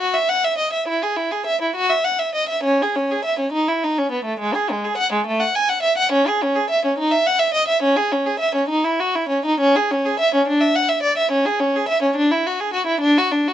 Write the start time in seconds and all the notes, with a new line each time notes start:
Already playing: F#4
0.14 E5
0.29 F#5
0.44 E5
0.58 D#5
0.73 E5
0.88 E4
1.02 G#4
1.16 E4
1.31 G#4
1.46 E5
1.62 E4
1.75 F#4
1.89 E5
2.04 F#5
2.19 E5
2.35 D#5
2.49 E5
2.63 C#4
2.82 G#4
2.96 C#4
3.11 G#4
3.25 E5
3.39 C#4
3.52 D#4
3.68 E4
3.83 D#4
3.98 C#4
4.12 B3
4.25 A3
4.39 G#3
4.54 G#4
4.71 G#3
4.84 G#4
4.97 F#5
5.13 G#3
5.27 A3
5.40 F#5
5.55 G#5
5.69 F#5
5.83 E5
5.98 F#5
6.12 C#4
6.27 G#4
6.42 C#4
6.55 G#4
6.70 E5
6.85 C#4
6.98 D#4
7.11 E5
7.26 F#5
7.39 E5
7.54 D#5
7.68 E5
7.83 C#4
7.96 G#4
8.12 C#4
8.26 G#4
8.39 E5
8.55 C#4
8.69 D#4
8.84 E4
9.00 F#4
9.15 E4
9.29 C#4
9.45 D#4
9.60 C#4
9.76 G#4
9.91 C#4
10.05 G#4
10.19 E5
10.34 C#4
10.48 D4
10.61 E5
10.75 F#5
10.89 E5
11.03 D5
11.17 E5
11.31 C#4
11.45 G#4
11.60 C#4
11.76 G#4
11.88 E5
12.02 C#4
12.16 D4
12.31 E4
12.46 F#4
12.60 G#4
12.73 F#4
12.87 E4
13.01 D4
13.18 F#4
13.32 D4
13.48 F#4